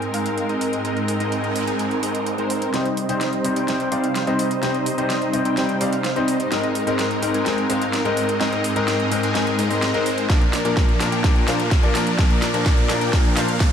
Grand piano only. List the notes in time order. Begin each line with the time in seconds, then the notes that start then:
Already playing: G#2 G#3 C4 D#4 A#4
2.73 C3 G3 C4 D#4 C5
3.09 C3 G3 C4 D#4 C5
3.44 C3 G3 C4 D#4 C5
3.68 C3 G3 C4 D#4 C5
3.91 C3 G3 C4 D#4 D5
4.27 C3 G3 C4 D#4 C5
4.62 C3 G3 C4 D#4 C5
4.97 C3 G3 C4 D#4 C5
5.33 C3 G3 C4 D#4 C5
5.56 C3 G3 C4 D#4 C5
5.80 C3 G3 C4 D#4 D5
6.16 C3 G3 C4 D#4 C5
6.51 G#2 G#3 C4 D#4 A#4
6.86 G#2 G#3 C4 D#4 A#4
7.22 G#2 G#3 C4 D#4 A#4
7.46 G#2 G#3 C4 D#4 A#4
7.69 G#2 G#3 C4 D#4 C5
8.05 G#2 G#3 C4 D#4 A#4
8.40 G#2 G#3 C4 D#4 A#4
8.76 G#2 G#3 C4 D#4 A#4
9.11 G#2 G#3 C4 D#4 A#4
9.35 G#2 G#3 C4 D#4 A#4
9.58 G#2 G#3 C4 D#4 A#4
9.70 G#2 G#3 C4 D#4 A#4
9.94 G#2 G#3 C4 D#4 A#4
10.29 A#2 F3 A#3 D4 A#4
10.64 A#2 F3 A#3 D4 A#4
11.00 A#2 F3 A#3 D4 A#4
11.24 A#2 F3 A#3 D4 A#4
11.47 A#2 F3 A#3 D4 C5
11.83 A#2 F3 A#3 D4 A#4
12.18 A#2 F3 A#3 D4 A#4
12.54 A#2 F3 A#3 D4 A#4
12.89 A#2 F3 A#3 D4 A#4
13.12 A#2 F3 A#3 D4 A#4
13.36 A#2 F3 A#3 D4 C5